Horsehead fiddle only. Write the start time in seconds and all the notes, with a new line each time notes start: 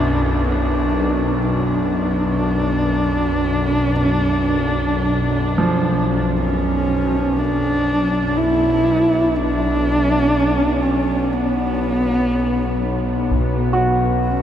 Already playing: D4
0.48 D4
1.46 D4
6.41 C#4
7.39 D4
8.38 E4
9.36 D4
10.82 C#4
11.34 B3
14.28 C#4